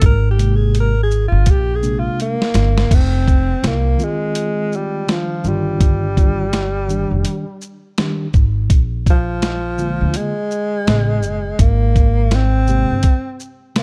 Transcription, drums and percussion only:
0.01 kick loud
0.01 closed hi-hat medium
0.39 closed hi-hat soft
0.39 shaker soft
0.75 closed hi-hat medium
1.11 shaker medium
1.46 kick medium
1.46 closed hi-hat medium
1.83 shaker soft
2.20 closed hi-hat soft
2.42 snare medium
2.54 snare loud
2.54 closed hi-hat medium
2.54 shaker medium
2.78 snare loud
2.91 kick loud
2.91 closed hi-hat loud
2.91 crash medium
3.28 kick medium
3.28 closed hi-hat soft
3.28 shaker soft
3.64 snare loud
3.64 closed hi-hat medium
3.99 shaker medium
4.35 closed hi-hat medium
4.72 shaker soft
5.09 snare medium
5.09 closed hi-hat soft
5.44 shaker soft
5.81 kick loud
5.81 closed hi-hat loud
6.17 kick medium
6.17 closed hi-hat soft
6.17 shaker soft
6.53 snare medium
6.53 closed hi-hat medium
6.89 shaker medium
7.25 closed hi-hat medium
7.61 shaker medium
7.98 snare loud
7.98 closed hi-hat soft
8.34 kick medium
8.34 shaker medium
8.70 kick loud
8.70 closed hi-hat loud
9.06 kick medium
9.06 closed hi-hat soft
9.06 shaker soft
9.42 snare medium
9.42 closed hi-hat medium
9.78 shaker medium
10.14 closed hi-hat medium
10.51 shaker medium
10.87 snare loud
10.87 closed hi-hat soft
11.22 shaker medium
11.59 kick loud
11.59 closed hi-hat loud
11.96 kick medium
11.96 closed hi-hat soft
11.96 shaker soft
12.31 snare medium
12.31 closed hi-hat medium
12.67 shaker medium
13.03 kick medium
13.03 closed hi-hat medium
13.40 shaker soft
13.76 snare medium
13.76 closed hi-hat medium

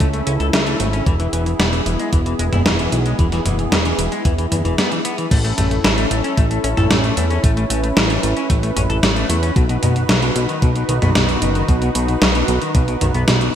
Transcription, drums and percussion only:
0.00 kick loud
0.00 closed hi-hat medium
0.13 closed hi-hat soft
0.27 closed hi-hat medium
0.40 closed hi-hat soft
0.53 snare loud
0.53 closed hi-hat medium
0.67 closed hi-hat soft
0.80 closed hi-hat medium
0.93 closed hi-hat soft
1.06 kick loud
1.06 closed hi-hat medium
1.20 closed hi-hat soft
1.33 closed hi-hat medium
1.46 closed hi-hat soft
1.60 snare loud
1.60 closed hi-hat medium
1.73 closed hi-hat soft
1.86 closed hi-hat medium
1.99 closed hi-hat soft
2.13 kick loud
2.13 closed hi-hat medium
2.26 closed hi-hat soft
2.39 closed hi-hat medium
2.53 closed hi-hat soft
2.53 mid tom medium
2.66 snare loud
2.66 closed hi-hat medium
2.79 closed hi-hat soft
2.92 closed hi-hat medium
3.06 closed hi-hat soft
3.19 kick loud
3.19 closed hi-hat medium
3.32 snare soft
3.32 closed hi-hat soft
3.46 closed hi-hat medium
3.46 mid tom medium
3.59 closed hi-hat soft
3.72 snare loud
3.72 closed hi-hat medium
3.85 closed hi-hat soft
3.99 closed hi-hat medium
4.12 closed hi-hat soft
4.25 kick loud
4.25 closed hi-hat medium
4.38 closed hi-hat soft
4.52 closed hi-hat medium
4.52 mid tom medium
4.65 closed hi-hat soft
4.78 snare loud
4.78 closed hi-hat medium
4.92 closed hi-hat soft
5.05 closed hi-hat medium
5.18 closed hi-hat soft
5.31 kick loud
5.31 closed hi-hat medium
5.31 crash loud
5.45 closed hi-hat soft
5.58 closed hi-hat loud
5.58 mid tom medium
5.71 closed hi-hat soft
5.84 snare loud
5.84 closed hi-hat medium
5.98 closed hi-hat soft
6.11 closed hi-hat loud
6.24 closed hi-hat soft
6.37 kick loud
6.37 closed hi-hat medium
6.51 closed hi-hat soft
6.64 closed hi-hat medium
6.77 closed hi-hat soft
6.77 mid tom medium
6.91 snare loud
6.91 closed hi-hat medium
7.04 closed hi-hat soft
7.17 closed hi-hat loud
7.30 closed hi-hat soft
7.44 kick loud
7.44 closed hi-hat medium
7.57 closed hi-hat soft
7.70 closed hi-hat loud
7.84 closed hi-hat soft
7.97 snare loud
7.97 closed hi-hat medium
8.10 closed hi-hat soft
8.23 closed hi-hat loud
8.37 closed hi-hat soft
8.50 kick loud
8.50 closed hi-hat medium
8.63 closed hi-hat soft
8.77 closed hi-hat medium
8.77 mid tom medium
8.90 closed hi-hat soft
9.03 snare loud
9.03 closed hi-hat medium
9.16 closed hi-hat soft
9.30 closed hi-hat loud
9.43 closed hi-hat soft
9.56 kick loud
9.56 closed hi-hat medium
9.69 closed hi-hat soft
9.83 closed hi-hat medium
9.83 mid tom medium
9.96 closed hi-hat soft
10.09 snare loud
10.09 closed hi-hat medium
10.22 closed hi-hat soft
10.36 closed hi-hat medium
10.49 closed hi-hat soft
10.62 kick loud
10.62 closed hi-hat medium
10.76 closed hi-hat soft
10.89 closed hi-hat medium
11.02 closed hi-hat soft
11.02 mid tom medium
11.15 snare loud
11.15 closed hi-hat medium
11.29 closed hi-hat soft
11.42 closed hi-hat medium
11.55 closed hi-hat soft
11.68 kick loud
11.68 closed hi-hat medium
11.82 closed hi-hat soft
11.95 closed hi-hat loud
12.08 closed hi-hat soft
12.22 snare loud
12.22 closed hi-hat medium
12.35 closed hi-hat soft
12.48 closed hi-hat medium
12.62 closed hi-hat soft
12.75 kick loud
12.75 closed hi-hat medium
12.88 closed hi-hat soft
13.01 closed hi-hat medium
13.01 mid tom medium
13.14 closed hi-hat soft
13.28 snare loud
13.28 closed hi-hat medium
13.41 closed hi-hat soft

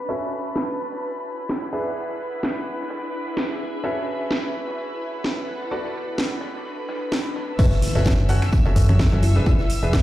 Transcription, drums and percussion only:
0.22 snare soft
0.32 open hi-hat medium
0.56 snare loud
0.68 closed hi-hat soft
0.92 snare medium
1.02 tambourine medium
1.26 tambourine medium
1.49 snare loud
1.62 snare medium
1.72 tambourine medium
1.86 snare soft
1.96 tambourine medium
2.09 snare soft
2.20 tambourine medium
2.43 snare loud
2.57 closed hi-hat soft
2.67 tambourine medium
2.81 snare soft
2.90 snare loud
2.90 tambourine medium
3.13 tambourine medium
3.26 snare soft
3.37 snare loud
3.50 snare soft
3.61 tambourine medium
3.84 tambourine medium
3.97 snare soft
4.08 open hi-hat medium
4.31 snare loud
4.43 closed hi-hat soft
4.54 tambourine medium
4.67 snare medium
4.78 tambourine medium
5.02 tambourine medium
5.24 snare loud
5.24 tambourine medium
5.37 snare soft
5.48 tambourine medium
5.61 snare soft
5.72 tambourine medium
5.84 snare soft
5.95 tambourine medium
6.18 snare loud
6.31 closed hi-hat soft
6.41 snare loud
6.41 tambourine medium
6.55 snare soft
6.65 open hi-hat medium
6.89 snare loud
6.89 tambourine medium
7.01 closed hi-hat soft
7.12 snare loud
7.12 tambourine medium
7.25 snare soft
7.35 snare medium
7.35 tambourine medium
7.59 kick loud
7.59 tambourine medium
7.59 crash loud
7.72 snare soft
7.72 tambourine soft
7.82 open hi-hat loud
7.82 open hi-hat medium
7.82 tambourine medium
7.95 tambourine soft
8.04 kick loud
8.04 snare loud
8.04 tambourine medium
8.18 closed hi-hat soft
8.18 tambourine soft
8.29 open hi-hat medium
8.29 tambourine medium
8.42 finger snap medium
8.42 snare medium
8.42 tambourine soft
8.52 kick loud
8.52 tambourine loud
8.52 tambourine medium
8.65 tambourine soft
8.76 kick medium
8.76 open hi-hat loud
8.76 tambourine medium
8.89 finger snap medium
8.89 tambourine soft
8.89 high conga medium
8.99 kick loud
8.99 snare loud
8.99 tambourine medium
9.12 snare medium
9.12 tambourine soft
9.12 high conga medium
9.23 open hi-hat loud
9.23 tambourine loud
9.23 tambourine medium
9.35 snare soft
9.35 tambourine soft
9.46 kick loud
9.46 tambourine medium
9.59 snare soft
9.59 tambourine soft
9.69 open hi-hat loud
9.69 tambourine medium
9.69 tambourine loud
9.83 tambourine soft
9.93 kick loud
9.93 snare loud
9.93 tambourine medium

